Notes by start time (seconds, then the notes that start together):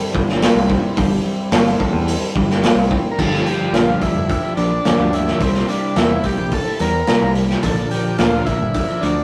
Already playing: G2 G3 C4 E4 A4 C5 G5 C6
0.01 high conga, low conga
0.13 G1 G3, kick, high conga
0.29 snare
0.41 C4, snare, open hi-hat
0.55 C2, high conga
0.69 E4, kick, low conga
0.97 G1 G3, kick, open hi-hat
1.24 C4, high conga
1.51 G1 C4, snare, open hi-hat
1.67 snare, high conga
1.80 A4, kick, low conga
1.93 E2
2.07 E4, open hi-hat
2.22 high conga, low conga
2.36 G1 G3, kick, high conga
2.50 snare
2.62 C4, snare, open hi-hat
2.75 C2
2.91 E4, kick, low conga
3.11 A#4
3.18 G1 G2 D3 F3 A#3 F4 G4 A4 D5 G5 A#5, kick, crash
3.33 snare
3.45 F3 A#3 F4 G4, open hi-hat
3.73 A#1 G2 D3 F3 A#3 F4 G4, snare, open hi-hat
4.01 F3 A#3 E4 F4 G4, kick, open hi-hat
4.15 F1, muted clean electric guitar stroke
4.29 kick, open hi-hat
4.43 F3 A#3 F4 G4
4.57 A#1 F3 A#3 D4 F4 G4, open hi-hat
4.72 muted clean electric guitar stroke
4.85 G2 D3 F3 A#3 F4 G4, snare, open hi-hat
4.99 D2
5.13 F3 A#3 E4 F4 G4, open hi-hat
5.27 F3 A#3 F4 G4, snare
5.40 C2 C3 G3 A#3 C4 E4 G4 C5, kick, open hi-hat
5.54 snare
5.68 G3 A#3 D4 E4 G4, open hi-hat
5.96 E2 C3 G3 A#3 E4 G4, snare, open hi-hat
6.24 G3 A#3 E4 G4, kick, open hi-hat
6.38 A#1, muted clean electric guitar stroke
6.52 A4, kick, open hi-hat
6.66 A#3 E4 G4
6.79 E2 G3 A#3 E4 G4 A#4, open hi-hat
6.94 muted clean electric guitar stroke
7.07 C3 G3 A#3 E4 G4, snare, open hi-hat
7.22 C2
7.35 G3 A#3 E4 G4, open hi-hat
7.48 A#3 E4 G4, snare
7.63 A#1 A#2 D3 F3 A#3 D4 A4 D5, kick, open hi-hat
7.67 A#4
7.91 F3 A#3 D4 G4 A#4, open hi-hat
8.18 D2 A#2 D3 F3 A#3 D4 F4 A#4, snare, open hi-hat
8.45 F3 A#3 D4 E4, kick, open hi-hat
8.50 A#4
8.61 G1, muted clean electric guitar stroke
8.74 kick, open hi-hat
8.87 F3 A#3 D4 A#4
9.01 D2 F3 A#3 D4 A#4, open hi-hat
9.16 muted clean electric guitar stroke